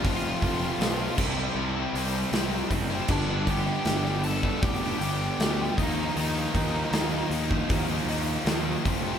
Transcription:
0.03 F1 F2 C3 F3 A3 C4 F4 F5, kick, open hi-hat
0.41 F1 F2 C3 F3 A3 C4 F4, kick, open hi-hat
0.78 B1 F2 C3 F3 A3 C4 F4, snare, open hi-hat
1.00 F3 A3 C4 F4
1.17 C2 C3 G3 C4 E4, kick, crash
1.37 G3 C4 E4
1.55 C2 C3 G3 C4 E4
1.76 G3 C4 E4
1.93 C2 C3 G3 C4, open hi-hat
1.98 E4
2.32 C2 C3 G3 C4 E4, snare, open hi-hat
2.52 G3 C4 E4
2.69 F#1 C3 G3 C4 E4, muted distorted electric guitar stroke, kick, open hi-hat
2.90 G3 C4 E4
3.08 G1 G2 D3 G3 B3 D4 D5, kick, crash
3.46 G2 D3 G3 B3 D4 G5, kick, open hi-hat
3.50 G4
3.85 G1 G2 D3 G3 B3 D4, snare, open hi-hat
4.04 G3 B3 D4, snare
4.24 G2 D3 G3 B3 D4 A4 A5, muted distorted electric guitar stroke, open hi-hat
4.43 G3 B3 D4, kick
4.62 F1 G2 D3 G3 B3 D4 G4 G5, kick, open hi-hat
4.82 G3 B3 D4
4.99 G1 G2 D3 G3 B3 G5, open hi-hat
5.03 D4 G4
5.39 D2 G2 D3 G3 B3 D4, snare, open hi-hat
5.59 G3 B3 D4
5.77 D#2 D#3 F3 A#3 D#4 D#5, kick, open hi-hat
5.83 D#4
5.96 F3 A#3 D#4
6.16 D#2 D#3 F3 A#3 D#4 D#5, open hi-hat
6.54 D#2 D#3 F3 A#3 D#4, kick, open hi-hat
6.91 D#2 D#3 F3, snare, open hi-hat
6.96 A#3 D#4
7.13 F3 A#3 D#4
7.30 D#2 D#3 F3 A#3, muted distorted electric guitar stroke, open hi-hat
7.35 D#4
7.51 F3 A#3 D#4, kick
7.69 D#2 D#3 F3 A#3 D#4, kick, open hi-hat
7.89 F3 A#3 D#4
8.05 D#2 D#3, open hi-hat
8.09 F3 A#3 D#4
8.45 D#2 D#3 F3 A#3 D#4, snare, open hi-hat
8.66 F3 A#3 D#4
8.85 F1 F2 C3 F3 A3 C4, kick, open hi-hat
9.05 F3 A3 C4

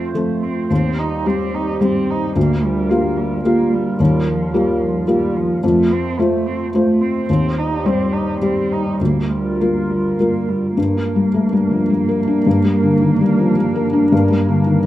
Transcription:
Already playing: F2 F3 A3 C4 F4 A4 C5
0.14 F3 A3 C4 A4
0.43 C4
0.68 D#2 G3 C4 G4
0.99 D#4
1.25 G3 C4 G4
1.55 D#4
1.81 G3 C4 G4
2.10 D#4
2.35 D2 A#3 F4 A#4
2.64 G3
2.89 A#3 F4 G4
3.17 G3
3.44 A#3 F4 G4
3.73 G3
4.00 D#2 G3
4.27 F3
4.54 G3 A#3 F4 G4
4.82 F3
5.08 G3 A#3 F4 G4
5.36 F3
5.62 F2 A3 C5
5.92 C4
6.19 A3 F4 C5
6.46 C4
6.74 A3 F4 C5
7.01 C4
7.29 D#2 G3 C4 G4
7.58 D#4
7.85 G3 C4 G4 C5
8.13 D#4
8.41 G3 C4 G4 C5
8.72 D#4
8.99 D2 A#3 F4 A#4
9.31 G3
9.60 G3 A#3 F4 A#4
9.90 G3
10.18 G3 A#3 F4 A#4
10.49 G3
10.76 G2 G3 A#3 D4 A#4
10.97 D4
11.16 G3
11.34 A3
11.53 G3
11.71 F3
11.90 G3
12.09 A#4
12.28 D4
12.46 G2
12.64 G3
12.83 D3
13.02 D#3
13.21 G3
13.39 F3
13.57 G3
13.76 A#4
13.93 D4
14.12 G2
14.31 G3
14.49 D3
14.67 D#3

